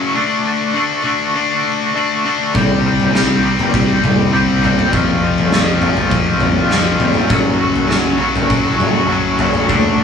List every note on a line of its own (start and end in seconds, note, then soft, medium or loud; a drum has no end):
0.00 0.13 F#2 medium
0.00 0.14 F#2 medium
0.00 0.14 C#3 medium
0.00 0.14 F#3 medium
0.00 0.15 A3 medium
0.00 0.14 C#4 medium
0.00 0.13 F#4 medium
0.15 0.44 D3 medium
0.15 0.46 A3 medium
0.15 0.46 D4 medium
0.15 0.47 F#4 medium
0.46 0.75 D3 medium
0.46 0.63 A3 medium
0.46 0.61 D4 medium
0.46 0.60 F#4 medium
0.61 0.76 A3 soft
0.61 0.76 D4 medium
0.61 0.77 F#4 medium
0.76 1.04 D3 medium
0.76 0.92 A3 medium
0.76 0.90 D4 medium
0.76 0.89 F#4 medium
0.90 1.05 A3 soft
0.90 1.05 D4 soft
0.90 1.06 F#4 medium
1.05 1.50 D3 medium
1.05 1.21 A3 medium
1.05 1.20 D4 medium
1.05 1.19 F#4 medium
1.20 1.51 A3 medium
1.20 1.50 D4 medium
1.20 1.49 F#4 medium
1.35 1.94 D3 medium
1.35 1.94 A3 medium
1.35 1.95 D4 medium
1.50 1.82 A3 medium
1.50 1.80 D4 medium
1.50 1.78 F#4 medium
1.80 1.94 A3 soft
1.80 1.95 D4 medium
1.80 1.96 F#4 medium
1.94 2.22 D3 medium
1.94 2.23 A3 medium
1.94 2.24 D4 medium
1.94 2.25 F#4 medium
2.23 2.52 D3 medium
2.23 2.41 A3 medium
2.23 2.40 D4 medium
2.23 2.38 F#4 medium
2.40 2.54 A3 soft
2.40 2.53 D4 medium
2.40 2.52 F#4 medium
2.53 3.46 C2 medium
2.53 3.12 C3 medium
2.53 2.83 D#3 medium
2.53 2.84 G3 medium
2.53 2.85 C4 medium
2.53 2.86 G4 medium
2.53 kick loud
2.53 floor tom medium
2.84 3.13 D#3 medium
2.84 2.99 G3 medium
2.84 2.99 C4 medium
2.84 2.97 G4 medium
2.98 3.14 G3 medium
2.98 3.15 C4 medium
2.98 3.15 G4 medium
2.98 floor tom medium
3.13 3.58 C3 medium
3.13 3.42 D#3 medium
3.13 3.30 G3 medium
3.13 3.29 C4 medium
3.13 3.27 G4 medium
3.13 snare medium
3.29 3.43 G3 soft
3.29 3.44 C4 medium
3.29 3.44 G4 medium
3.43 3.72 C3 medium
3.43 3.88 D#3 medium
3.43 3.59 G3 medium
3.43 3.58 C4 medium
3.43 3.57 G4 medium
3.58 3.89 G3 medium
3.58 3.87 C4 medium
3.58 3.86 G4 medium
3.58 floor tom medium
3.73 3.96 C2 medium
3.73 4.31 C3 medium
3.73 4.32 G3 medium
3.73 4.32 C4 medium
3.73 kick medium
3.87 4.19 G3 medium
3.87 4.17 C4 medium
3.87 4.15 G4 medium
4.04 4.72 C2 medium
4.04 floor tom medium
4.04 mid tom medium
4.17 4.31 G3 soft
4.17 4.32 C4 medium
4.17 4.32 G4 medium
4.31 4.89 C3 medium
4.31 4.60 D#3 medium
4.31 4.61 G3 medium
4.31 4.61 C4 medium
4.31 4.62 G4 medium
4.61 4.91 C3 medium
4.61 4.90 D#3 medium
4.61 4.78 G3 medium
4.61 4.77 C4 medium
4.61 4.75 G4 medium
4.61 floor tom medium
4.76 4.91 G3 medium
4.76 4.91 C4 medium
4.76 4.90 G4 medium
4.76 mid tom medium
4.92 5.50 F2 medium
4.92 5.84 F2 medium
4.92 5.51 C3 medium
4.92 5.20 F3 medium
4.92 5.22 A3 medium
4.92 5.22 C4 medium
4.92 5.23 F4 medium
4.92 kick loud
4.92 floor tom medium
5.21 5.38 F3 medium
5.21 5.38 A3 medium
5.21 5.37 C4 medium
5.21 5.35 F4 medium
5.36 5.51 F3 soft
5.36 5.52 A3 medium
5.36 5.52 C4 medium
5.36 5.52 F4 medium
5.36 floor tom medium
5.51 5.96 F2 medium
5.51 5.97 C3 medium
5.51 5.68 F3 medium
5.51 5.68 A3 medium
5.51 5.66 C4 medium
5.51 5.65 F4 medium
5.51 snare medium
5.66 5.79 F3 soft
5.66 5.81 A3 medium
5.66 5.81 C4 medium
5.66 5.82 F4 medium
5.80 6.09 F2 medium
5.80 6.09 C3 medium
5.80 5.96 F3 medium
5.80 5.96 A3 medium
5.80 5.94 C4 medium
5.80 5.93 F4 medium
5.80 mid tom medium
5.94 6.27 F3 medium
5.94 6.27 A3 medium
5.94 6.25 C4 medium
5.94 6.24 F4 medium
5.94 floor tom medium
6.10 6.69 F2 medium
6.10 6.34 F2 medium
6.10 6.70 C3 medium
6.10 6.70 F3 medium
6.10 kick medium
6.25 6.57 F3 medium
6.25 6.57 A3 medium
6.25 6.55 C4 medium
6.25 6.54 F4 medium
6.40 7.10 F2 medium
6.40 floor tom medium
6.40 mid tom medium
6.55 6.70 F3 medium
6.55 6.71 A3 medium
6.55 6.71 C4 medium
6.55 6.71 F4 medium
6.70 7.28 F2 medium
6.70 7.28 C3 medium
6.70 6.99 F3 medium
6.70 7.00 A3 medium
6.70 7.00 C4 medium
6.70 7.01 F4 medium
6.70 snare medium
6.99 7.28 F2 medium
6.99 7.28 C3 medium
6.99 7.15 F3 medium
6.99 7.15 A3 medium
6.99 7.14 C4 medium
6.99 7.12 F4 medium
6.99 floor tom medium
7.14 7.29 F3 soft
7.14 7.30 A3 medium
7.14 7.28 C4 medium
7.14 7.28 F4 medium
7.14 mid tom medium
7.29 7.87 F#2 medium
7.29 8.22 F#2 medium
7.29 7.87 C#3 medium
7.29 7.57 F#3 medium
7.29 7.57 A3 medium
7.29 7.58 C#4 medium
7.29 7.59 F#4 medium
7.29 kick loud
7.29 floor tom medium
7.58 7.75 F#3 medium
7.58 7.74 A3 medium
7.58 7.73 C#4 medium
7.58 7.72 F#4 medium
7.74 7.88 F#3 medium
7.74 7.88 A3 medium
7.74 7.89 C#4 medium
7.74 7.89 F#4 medium
7.74 floor tom medium
7.88 8.34 F#2 medium
7.88 8.34 C#3 medium
7.88 8.04 F#3 medium
7.88 8.03 A3 medium
7.88 8.02 C#4 medium
7.88 8.01 F#4 medium
7.88 snare medium
8.02 8.17 F#3 soft
8.02 8.18 A3 medium
8.02 8.19 C#4 medium
8.02 8.20 F#4 medium
8.18 8.47 F#2 medium
8.18 8.47 C#3 medium
8.18 8.34 F#3 medium
8.18 8.33 A3 medium
8.18 8.33 C#4 medium
8.18 8.32 F#4 medium
8.33 8.65 F#3 medium
8.33 8.64 A3 medium
8.33 8.63 C#4 medium
8.33 8.62 F#4 medium
8.33 floor tom medium
8.48 9.07 F#2 medium
8.48 8.73 F#2 medium
8.48 9.08 C#3 medium
8.48 9.08 F#3 medium
8.48 kick loud
8.63 8.95 F#3 soft
8.63 8.94 A3 medium
8.63 8.93 C#4 medium
8.63 8.92 F#4 medium
8.78 9.48 F#2 medium
8.78 floor tom medium
8.78 mid tom medium
8.93 9.08 F#3 medium
8.93 9.08 A3 medium
8.93 9.08 C#4 medium
8.93 9.09 F#4 medium
9.08 9.67 F#2 medium
9.08 9.67 C#3 medium
9.08 9.36 F#3 medium
9.08 9.37 A3 medium
9.08 9.38 C#4 loud
9.08 9.39 F#4 medium
9.37 9.67 F#2 medium
9.37 9.67 C#3 medium
9.37 9.53 F#3 medium
9.37 9.53 A3 medium
9.37 9.52 C#4 medium
9.37 9.51 F#4 medium
9.37 floor tom medium
9.52 9.67 F#3 medium
9.52 9.67 A3 medium
9.52 9.67 C#4 medium
9.52 9.66 F#4 medium
9.52 mid tom medium
9.68 10.04 D2 medium
9.68 10.04 D3 medium
9.68 9.96 F#3 medium
9.68 9.97 A3 medium
9.68 9.98 D4 medium
9.68 9.99 F#4 medium
9.68 kick loud
9.68 floor tom medium
9.98 10.04 F#3 medium
9.98 10.04 A3 medium
9.98 10.04 D4 medium
9.98 10.04 F#4 medium